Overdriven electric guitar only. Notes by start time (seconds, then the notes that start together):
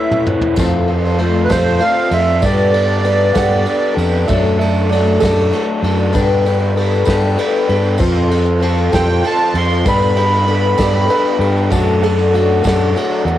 Already playing: A2 C#4 E4
0.28 B3
0.57 F2 C3 F3 A3 C4 F4
0.89 F3 A3 C4 F4
1.19 F3 A3 C4 F4
1.50 F3 A3 C4 F4
1.80 F3 A3 C4 F4
2.12 F3 A3 C4 F4
2.42 G2 D3 G3 B3 D4 G4
2.73 G3 B3 D4 G4
3.03 G3 B3 D4 G4
3.34 G3 B3 D4 G4
3.65 G3 B3 D4 G4
3.96 G3 B3 D4 G4
4.27 F#3 A3 D4 A4
4.58 A3 D4 A4
4.90 F#3 A3 D4 A4
5.21 A3 D4 A4
5.51 F#3 A3 D4 A4
5.83 A3 D4 A4
6.14 G2 D3 G3 B3 D4 G4
6.45 G3 B3 D4 G4
6.77 G3 B3 D4 G4
7.08 G3 B3 D4 G4
7.38 G3 B3 D4 G4
7.70 G3 B3 D4 G4
8.00 F3 C4 F4 A4
8.30 C4 F4 A4
8.60 F3 C4 F4 A4
8.93 C4 F4 A4
9.23 F3 C4 F4 A4
9.54 C4 F4 A4
9.84 G2 D3 G3 B3 D4 G4
10.15 G3 B3 D4 G4
10.46 G3 B3 D4 G4
10.77 G3 B3 D4 G4
11.08 G3 B3 D4 G4
11.38 G3 B3 D4 G4
11.70 F#3 A3 D4 F#4
12.01 A3 D4 F#4
12.33 F#3 A3 D4 F#4
12.63 A3 D4 F#4
12.94 F#3 A3 D4 F#4
13.25 A3 D4 F#4